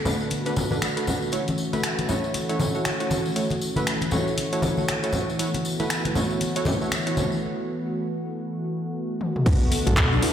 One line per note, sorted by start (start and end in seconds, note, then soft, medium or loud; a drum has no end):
0.00 1.29 D3 medium
0.00 9.42 A3 medium
0.00 1.29 B3 medium
0.00 9.42 F#4 medium
0.05 0.42 A3 medium
0.05 0.42 D4 medium
0.05 0.42 F#4 medium
0.05 0.42 B4 medium
0.05 tambourine medium
0.05 low conga loud
0.21 tambourine soft
0.30 closed hi-hat medium
0.30 tambourine soft
0.30 muted conga soft
0.45 0.68 A3 medium
0.45 0.68 D4 medium
0.45 0.68 F#4 medium
0.45 0.68 B4 medium
0.45 closed hi-hat soft
0.45 tambourine soft
0.56 tambourine medium
0.56 muted conga soft
0.56 high conga loud
0.56 low conga loud
0.71 0.93 A3 medium
0.71 0.93 D4 medium
0.71 0.93 F#4 medium
0.71 0.93 B4 medium
0.71 tambourine soft
0.71 high conga medium
0.71 low conga medium
0.82 finger snap loud
0.82 closed hi-hat medium
0.82 tambourine medium
0.82 muted conga soft
0.97 1.30 A3 medium
0.97 1.30 D4 medium
0.97 1.30 F#4 medium
0.97 1.30 B4 medium
0.97 closed hi-hat soft
0.97 tambourine soft
1.07 tambourine medium
1.07 muted conga soft
1.07 low conga medium
1.22 tambourine soft
1.32 9.42 E3 medium
1.32 1.44 A3 medium
1.32 5.35 C#4 medium
1.32 1.44 E4 medium
1.32 1.44 F#4 medium
1.32 1.44 C#5 medium
1.32 closed hi-hat medium
1.32 tambourine soft
1.48 closed hi-hat soft
1.48 tambourine soft
1.48 muted conga medium
1.58 tambourine medium
1.73 2.06 A3 medium
1.73 2.06 E4 medium
1.73 2.06 F#4 medium
1.73 2.06 B4 medium
1.73 closed hi-hat soft
1.73 tambourine soft
1.73 muted conga soft
1.83 finger snap loud
1.83 closed hi-hat medium
1.83 tambourine medium
1.98 closed hi-hat soft
1.98 tambourine soft
1.98 muted conga soft
2.09 2.46 A3 medium
2.09 2.46 E4 medium
2.09 2.46 F#4 medium
2.09 2.46 C#5 medium
2.09 tambourine medium
2.09 low conga medium
2.24 tambourine soft
2.34 closed hi-hat medium
2.34 tambourine medium
2.34 muted conga soft
2.49 2.71 A3 medium
2.49 2.71 E4 medium
2.49 2.71 F#4 medium
2.49 2.71 C#5 medium
2.49 closed hi-hat soft
2.49 tambourine soft
2.60 tambourine medium
2.60 muted conga soft
2.60 high conga loud
2.60 low conga medium
2.75 2.97 A3 medium
2.75 2.97 E4 medium
2.75 2.97 F#4 medium
2.75 2.97 C#5 medium
2.75 tambourine soft
2.85 finger snap loud
2.85 closed hi-hat medium
2.85 tambourine soft
2.85 muted conga soft
3.00 3.33 A3 medium
3.00 3.33 E4 medium
3.00 3.33 F#4 medium
3.00 3.33 C#5 medium
3.00 closed hi-hat soft
3.00 tambourine soft
3.11 tambourine medium
3.11 muted conga soft
3.11 high conga medium
3.11 low conga medium
3.26 tambourine soft
3.36 3.47 A3 medium
3.36 3.47 E4 medium
3.36 3.47 F#4 medium
3.36 3.47 C#5 medium
3.36 closed hi-hat medium
3.36 tambourine soft
3.51 closed hi-hat soft
3.51 tambourine soft
3.51 muted conga soft
3.61 tambourine medium
3.76 4.10 A3 medium
3.76 4.10 E4 medium
3.76 4.10 F#4 medium
3.76 4.10 B4 medium
3.76 closed hi-hat soft
3.76 tambourine soft
3.76 muted conga soft
3.76 high conga medium
3.87 finger snap medium
3.87 closed hi-hat medium
3.87 tambourine soft
4.01 closed hi-hat soft
4.01 tambourine soft
4.01 muted conga soft
4.11 4.49 A3 medium
4.11 4.49 E4 medium
4.11 4.49 F#4 medium
4.11 4.49 C#5 medium
4.11 tambourine medium
4.11 low conga medium
4.28 tambourine soft
4.38 closed hi-hat medium
4.38 tambourine soft
4.38 muted conga soft
4.53 4.74 A3 medium
4.53 4.74 E4 medium
4.53 4.74 F#4 medium
4.53 4.74 C#5 medium
4.53 closed hi-hat soft
4.53 tambourine soft
4.62 tambourine medium
4.62 muted conga soft
4.62 high conga loud
4.62 low conga loud
4.77 5.00 A3 medium
4.77 5.00 E4 medium
4.77 5.00 F#4 medium
4.77 5.00 C#5 medium
4.77 tambourine soft
4.77 high conga medium
4.88 finger snap medium
4.88 closed hi-hat medium
4.88 tambourine medium
4.88 muted conga soft
5.03 5.37 A3 medium
5.03 5.37 E4 medium
5.03 5.37 F#4 medium
5.03 5.37 C#5 medium
5.03 closed hi-hat soft
5.03 tambourine soft
5.13 tambourine medium
5.13 muted conga soft
5.13 low conga medium
5.29 tambourine soft
5.39 5.50 A3 medium
5.39 9.42 B3 medium
5.39 5.50 E4 medium
5.39 5.50 F#4 medium
5.39 5.50 C#5 medium
5.39 closed hi-hat medium
5.39 tambourine medium
5.54 closed hi-hat soft
5.54 tambourine soft
5.54 muted conga soft
5.65 tambourine medium
5.80 6.13 A3 medium
5.80 6.13 E4 medium
5.80 6.13 F#4 medium
5.80 6.13 B4 loud
5.80 closed hi-hat soft
5.80 tambourine soft
5.80 muted conga soft
5.90 finger snap medium
5.90 closed hi-hat medium
5.90 tambourine soft
6.05 closed hi-hat soft
6.05 tambourine soft
6.05 muted conga soft
6.15 6.52 A3 medium
6.15 6.52 E4 medium
6.15 6.52 F#4 medium
6.15 6.52 C#5 medium
6.15 tambourine medium
6.15 low conga medium
6.30 tambourine soft
6.41 closed hi-hat medium
6.41 tambourine medium
6.41 muted conga soft
6.56 6.78 A3 medium
6.56 6.78 E4 medium
6.56 6.78 F#4 medium
6.56 6.78 C#5 loud
6.56 closed hi-hat soft
6.56 tambourine soft
6.65 tambourine medium
6.65 muted conga soft
6.65 high conga loud
6.65 low conga loud
6.81 7.03 A3 medium
6.81 7.03 E4 medium
6.81 7.03 F#4 medium
6.81 7.03 C#5 medium
6.81 tambourine soft
6.92 finger snap medium
6.92 closed hi-hat medium
6.92 tambourine medium
6.92 muted conga soft
7.06 7.40 A3 medium
7.06 7.40 E4 medium
7.06 7.40 F#4 medium
7.06 7.40 C#5 medium
7.06 closed hi-hat soft
7.06 tambourine soft
7.17 tambourine medium
7.17 muted conga soft
7.17 high conga loud
7.17 low conga loud
7.32 tambourine soft
9.21 high tom medium
9.36 mid tom medium
9.46 9.58 B1 loud
9.46 10.33 D3 medium
9.46 9.57 A3 medium
9.46 10.33 A3 medium
9.46 9.60 B3 medium
9.46 10.33 B3 medium
9.46 9.57 D4 medium
9.46 9.57 F#4 medium
9.46 10.33 F#4 medium
9.46 9.57 B4 medium
9.46 kick loud
9.46 closed hi-hat soft
9.46 mid tom medium
9.46 tambourine soft
9.46 crash loud
9.60 tambourine soft
9.71 9.85 B3 medium
9.71 open hi-hat medium
9.71 tambourine medium
9.86 10.19 B1 medium
9.86 10.20 A3 medium
9.86 10.20 D4 medium
9.86 9.92 F#4 medium
9.86 10.20 F#4 medium
9.86 10.20 A4 loud
9.86 closed hi-hat medium
9.86 mid tom medium
9.86 tambourine soft
9.97 finger snap loud
9.97 kick loud
9.97 clap loud
9.97 closed hi-hat soft
9.97 tambourine medium
10.12 10.21 D4 medium
10.12 tambourine soft
10.22 10.33 A3 medium
10.22 10.33 D4 medium
10.22 10.33 E4 medium
10.22 10.33 F#4 medium
10.22 10.33 B4 medium
10.22 open hi-hat medium
10.22 tambourine loud